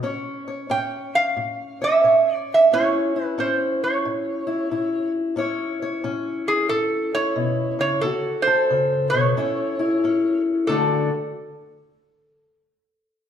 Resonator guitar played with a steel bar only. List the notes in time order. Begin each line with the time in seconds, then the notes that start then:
0.71 G5
1.15 F5
1.84 E5
2.35 D5
2.54 E5
2.74 C#5
3.25 B4
3.40 C5
3.84 C#5
6.48 G#4
6.69 A4
7.15 C#5
7.81 C#5
8.01 A4
8.42 C5
9.10 C#5
10.67 A4